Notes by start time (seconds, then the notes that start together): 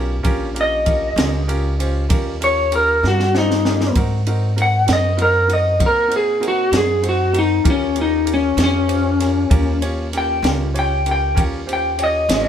Already playing: B1 C#4 F4 G4 A#4
0.23 A#1 C#4 F4 G4 A#4, kick, ride
0.53 C#4 F4 G4 A#4, ride
0.61 D#5
0.85 C#4 F4 G4 A#4, kick, ride
1.16 C#2 C#4 F4 G4 A#4, snare, ride
1.48 C#4 F4 G4 A#4, ride
1.79 C#4 F4 G4 C5, ride
2.09 D#2 C#4 F4 G4 A#4, kick, ride
2.40 C#4 F4 G4 A#4 C#5, ride
2.71 C#4 F4 G4 A#4, ride
2.76 A#4
3.02 G2 C#4 F4 G4 A#4, snare
3.07 F#4
3.20 snare
3.34 C#4 D#4 F4 G4 C5, snare
3.51 snare
3.65 C#4 F4 G4 A#4, snare
3.81 snare
3.95 G#2 C4 D#4 F#4 A#4, kick, ride
4.27 C4 D#4 F#4 A#4, ride
4.56 C4 D#4 F#4 A#4, ride
4.62 F#5
4.86 F#2 C4 D#4 F#4 A#4, snare, ride
4.93 D#5
5.16 C4 D#4 F#4 A#4, ride
5.22 A#4
5.48 C4 D#4 F#4 A#4, ride
5.53 D#5
5.79 A#2 C4 D#4 F#4 A#4, kick, ride
5.86 A#4
6.08 C4 D#4 F#4 C5, ride
6.16 G#4
6.40 C4 D#4 F#4 A#4, ride
6.48 F#4
6.72 F#2 C4 D#4 F#4 A#4, snare, ride
6.77 G#4
7.02 C4 D#4 F#4 C5, ride
7.09 F#4
7.32 C4 D#4 F#4 A#4, ride
7.38 D#4
7.64 D#2 C#4 F4 G4 A#4, kick, ride
7.70 C#4
7.95 C#4 F4 G4 A#4, ride
8.02 D#4
8.24 C#4 F4 G4 A#4, ride
8.34 C#4
8.57 F2 C#4 F4 G4 C#5, snare, ride
8.64 C#4
8.88 C#4 F4 G4 C5, ride
9.19 C#4 F4 G4 A#4, snare, ride
9.50 D#2 C#4 F4 G4 A#4, kick, ride
9.82 C#4 F4 G4 C#5, ride
10.13 C#4 F4 G4 A#4, ride
10.18 G5
10.43 C#2 C#4 F4 G4 A#4, snare, ride
10.74 C#4 F4 G4 C#5, ride
10.79 G5
11.06 C#4 F4 G4 A#4, ride
11.11 G5
11.35 D#2 C#4 F4 G4 A#4, kick, ride
11.66 C#4 F4 G4 C5, ride
11.73 G5
11.98 C#4 F4 G4 C#5, ride
12.04 D#5
12.29 G#1 C#4 F4 G4 C#5, snare, ride